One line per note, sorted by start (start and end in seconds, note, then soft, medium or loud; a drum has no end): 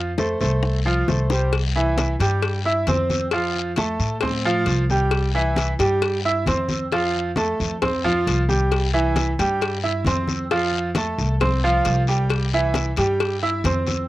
0.00 0.34 F2 medium
0.00 0.10 F3 medium
0.00 0.11 F4 medium
0.00 0.11 F5 medium
0.18 0.37 A3 medium
0.18 0.37 A4 medium
0.18 0.37 C5 medium
0.18 high bongo medium
0.18 high conga medium
0.18 short guiro medium
0.40 1.04 C2 medium
0.40 0.78 A3 medium
0.40 0.78 A4 medium
0.40 0.78 C5 medium
0.40 high bongo soft
0.40 high conga soft
0.40 short guiro medium
0.63 high bongo medium
0.63 high conga soft
0.63 long guiro medium
0.85 1.04 F3 medium
0.85 1.05 F4 medium
0.85 1.05 F5 medium
0.85 high bongo soft
0.85 high conga soft
1.08 2.14 C2 medium
1.08 1.27 A3 medium
1.08 1.27 A4 medium
1.08 1.27 C5 medium
1.08 high bongo soft
1.08 low bongo medium
1.08 high conga medium
1.08 short guiro medium
1.30 1.49 G3 medium
1.30 1.50 G4 medium
1.30 1.50 C5 medium
1.30 high bongo medium
1.30 short guiro medium
1.53 cowbell loud
1.53 high conga soft
1.53 long guiro medium
1.75 2.12 E3 medium
1.75 2.13 E4 medium
1.75 2.13 E5 medium
1.75 high conga soft
1.98 cowbell medium
1.98 high conga loud
1.98 short guiro medium
2.19 2.83 G2 medium
2.19 2.57 G3 medium
2.19 2.58 G4 medium
2.19 2.58 G5 medium
2.19 cowbell medium
2.19 high conga soft
2.19 short guiro medium
2.42 cowbell loud
2.42 high conga soft
2.42 long guiro medium
2.65 2.84 E4 medium
2.65 2.84 E5 medium
2.65 2.84 E6 medium
2.65 high conga soft
2.87 3.94 F2 medium
2.87 3.25 C4 medium
2.87 3.25 C5 medium
2.87 3.25 C6 medium
2.87 cowbell medium
2.87 high conga medium
2.87 short guiro medium
3.10 high conga medium
3.10 short guiro medium
3.31 3.70 F3 medium
3.31 3.70 F4 medium
3.31 3.70 F5 medium
3.31 cowbell loud
3.31 high conga soft
3.31 long guiro medium
3.55 high conga soft
3.76 4.14 A3 medium
3.76 4.14 A4 medium
3.76 4.15 A5 medium
3.76 cowbell medium
3.76 high conga medium
3.76 short guiro medium
3.99 4.63 A2 loud
3.99 high conga soft
3.99 short guiro medium
4.21 4.41 C4 medium
4.21 4.41 C5 medium
4.21 4.41 C6 medium
4.21 cowbell loud
4.21 high conga soft
4.21 low conga medium
4.21 long guiro medium
4.45 4.82 F3 medium
4.45 4.82 F4 medium
4.45 4.82 F5 medium
4.45 high conga soft
4.66 5.73 C2 loud
4.66 cowbell medium
4.66 high conga soft
4.66 short guiro medium
4.90 5.27 G3 medium
4.90 5.27 G4 medium
4.90 5.27 G5 medium
4.90 high conga medium
4.90 short guiro medium
5.11 cowbell loud
5.11 high conga soft
5.11 long guiro medium
5.34 5.72 E3 medium
5.34 5.72 E4 medium
5.34 5.72 E5 medium
5.34 high conga soft
5.56 cowbell medium
5.56 high conga loud
5.56 short guiro medium
5.79 6.43 G2 medium
5.79 6.16 G3 medium
5.79 6.17 G4 medium
5.79 6.17 G5 medium
5.79 cowbell medium
5.79 high conga soft
5.79 short guiro medium
6.01 cowbell loud
6.01 high conga soft
6.01 long guiro medium
6.24 6.43 E4 medium
6.24 6.43 E5 medium
6.24 6.44 E6 medium
6.24 high conga soft
6.46 7.53 F2 loud
6.46 6.84 C4 medium
6.46 6.84 C5 medium
6.46 6.84 C6 medium
6.46 cowbell medium
6.46 high conga medium
6.46 short guiro medium
6.68 high conga medium
6.68 short guiro medium
6.91 7.29 F3 medium
6.91 7.29 F4 medium
6.91 7.30 F5 medium
6.91 cowbell loud
6.91 high conga soft
6.91 long guiro medium
7.15 high conga soft
7.36 7.74 A3 medium
7.36 7.74 A4 medium
7.36 7.74 A5 medium
7.36 cowbell medium
7.36 high conga loud
7.36 short guiro medium
7.59 8.23 F2 medium
7.59 high conga soft
7.59 short guiro medium
7.82 8.00 C4 medium
7.82 8.00 C5 medium
7.82 8.01 C6 medium
7.82 cowbell loud
7.82 high conga soft
7.82 low conga medium
7.82 long guiro medium
8.04 8.41 F3 medium
8.04 8.41 F4 medium
8.04 8.41 F5 medium
8.04 high conga soft
8.04 low conga medium
8.27 9.33 C2 medium
8.27 cowbell medium
8.27 high conga soft
8.27 short guiro medium
8.49 8.86 G3 medium
8.49 8.86 G4 medium
8.49 8.86 G5 medium
8.49 high conga medium
8.49 short guiro medium
8.71 cowbell loud
8.71 high conga soft
8.71 long guiro medium
8.94 9.31 E3 medium
8.94 9.31 E4 medium
8.94 9.31 E5 medium
8.94 high conga soft
9.16 cowbell medium
9.16 high conga loud
9.16 short guiro medium
9.38 10.02 G2 medium
9.38 9.76 G3 medium
9.38 9.76 G4 medium
9.38 9.76 G5 medium
9.38 cowbell medium
9.38 high conga soft
9.38 short guiro medium
9.61 cowbell loud
9.61 high conga soft
9.61 long guiro medium
9.83 10.02 E4 medium
9.83 10.02 E5 medium
9.83 10.02 E6 medium
9.83 high conga soft
10.04 11.12 F2 medium
10.04 10.43 C4 medium
10.04 10.44 C5 medium
10.04 10.44 C6 medium
10.04 cowbell medium
10.04 high conga medium
10.04 short guiro medium
10.27 high conga medium
10.27 short guiro medium
10.50 10.88 F3 medium
10.50 10.88 F4 medium
10.50 10.88 F5 medium
10.50 cowbell loud
10.50 high conga soft
10.50 long guiro medium
10.72 high conga soft
10.95 11.33 A3 medium
10.95 11.33 A4 medium
10.95 11.34 A5 medium
10.95 cowbell medium
10.95 high conga loud
10.95 short guiro medium
11.18 11.82 C2 loud
11.18 high conga soft
11.18 short guiro medium
11.40 11.59 C4 medium
11.40 11.59 C5 medium
11.40 11.59 C6 medium
11.40 cowbell loud
11.40 high conga soft
11.40 low conga medium
11.40 long guiro medium
11.64 12.00 F3 medium
11.64 12.00 F4 medium
11.64 12.01 F5 medium
11.64 high conga soft
11.85 12.91 C2 loud
11.85 cowbell medium
11.85 high conga soft
11.85 short guiro medium
12.07 12.45 G3 medium
12.07 12.45 G4 medium
12.07 12.45 G5 medium
12.07 short guiro medium
12.30 cowbell loud
12.30 high conga soft
12.30 long guiro medium
12.53 12.90 E3 medium
12.53 12.90 E4 medium
12.53 12.90 E5 medium
12.53 high conga soft
12.74 cowbell medium
12.74 high conga loud
12.74 short guiro medium
12.96 13.61 G2 medium
12.96 13.34 G3 medium
12.96 13.35 G4 medium
12.96 13.35 G5 medium
12.96 cowbell medium
12.96 high conga soft
12.96 short guiro medium
13.20 cowbell loud
13.20 high conga soft
13.20 long guiro medium
13.42 13.61 E4 medium
13.42 13.61 E5 medium
13.42 13.61 E6 medium
13.42 high conga soft
13.64 14.06 F2 medium
13.64 14.02 C4 medium
13.64 14.02 C5 medium
13.64 14.02 C6 medium
13.64 cowbell medium
13.64 high conga medium
13.64 short guiro medium
13.87 high conga medium
13.87 short guiro medium